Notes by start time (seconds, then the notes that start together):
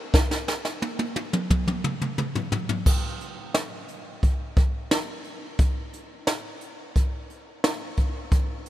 0.14 kick, snare
0.31 snare
0.48 snare
0.65 snare
0.82 high tom
0.99 high tom
1.16 high tom
1.33 mid tom
1.50 kick, mid tom
1.67 mid tom
1.84 mid tom
2.01 mid tom
2.18 mid tom
2.35 floor tom
2.52 floor tom
2.69 floor tom
2.86 kick, crash
3.21 closed hi-hat
3.54 snare, closed hi-hat
3.88 closed hi-hat
4.23 kick, closed hi-hat
4.57 kick, closed hi-hat
4.91 snare, closed hi-hat
5.24 closed hi-hat
5.59 kick, closed hi-hat
5.93 closed hi-hat
6.27 snare, closed hi-hat
6.61 closed hi-hat
6.96 kick, closed hi-hat
7.30 closed hi-hat
7.64 snare, closed hi-hat
7.97 kick, closed hi-hat
8.32 kick, closed hi-hat
8.66 closed hi-hat